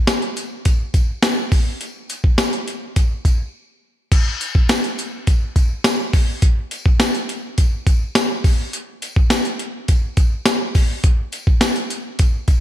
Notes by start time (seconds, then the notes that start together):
0.07 snare, closed hi-hat, tambourine
0.22 closed hi-hat
0.36 closed hi-hat, tambourine
0.65 kick, closed hi-hat, tambourine
0.94 kick, closed hi-hat, tambourine
1.22 snare, closed hi-hat, tambourine
1.52 kick, open hi-hat, tambourine
1.81 closed hi-hat, tambourine
2.09 closed hi-hat, tambourine
2.24 kick
2.38 snare, closed hi-hat, tambourine
2.53 closed hi-hat
2.67 closed hi-hat, tambourine
2.96 kick, closed hi-hat, tambourine
3.25 kick, closed hi-hat, tambourine
4.12 kick, closed hi-hat, crash, tambourine
4.40 closed hi-hat, tambourine
4.55 kick
4.69 snare, closed hi-hat, tambourine
4.84 closed hi-hat
4.98 closed hi-hat, tambourine
5.27 kick, closed hi-hat, tambourine
5.56 kick, closed hi-hat, tambourine
5.84 snare, closed hi-hat, tambourine
6.13 kick, open hi-hat, tambourine
6.42 kick, closed hi-hat
6.71 closed hi-hat, tambourine
6.86 kick
7.00 snare, closed hi-hat, tambourine
7.15 closed hi-hat
7.29 closed hi-hat, tambourine
7.58 kick, closed hi-hat, tambourine
7.87 kick, closed hi-hat, tambourine
8.15 snare, closed hi-hat, tambourine
8.44 kick, open hi-hat, tambourine
8.73 closed hi-hat
9.02 closed hi-hat, tambourine
9.16 kick
9.30 snare, closed hi-hat, tambourine
9.45 closed hi-hat
9.59 closed hi-hat
9.88 kick, closed hi-hat, tambourine
10.17 kick, closed hi-hat, tambourine
10.45 snare, closed hi-hat, tambourine
10.75 kick, open hi-hat, tambourine
11.04 kick, closed hi-hat
11.32 closed hi-hat, tambourine
11.47 kick
11.61 snare, closed hi-hat, tambourine
11.76 closed hi-hat
11.90 closed hi-hat, tambourine
12.19 kick, closed hi-hat, tambourine
12.48 kick, closed hi-hat, tambourine